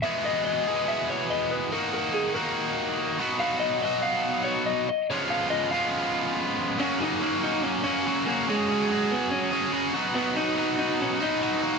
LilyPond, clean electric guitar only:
\new Staff \with { instrumentName = "Clean electric guitar" } { \time 4/4 \key fis \major \tempo 4 = 142 e''8 dis''8 dis''4 e''8 cis''8 dis''8 b'8 | ais'8 ais'8 gis'8 ais'2 r8 | eis''8 dis''8 dis''8 eis''4 cis''8 dis''8 dis''8 | cis''8 eis''8 dis''8 eis''2 r8 |
cis'8 dis'4 dis'8 cis'8 cis'4 ais8 | gis4. b8 cis'4. r8 | b8 dis'4 dis'8 cis'8 dis'4. | }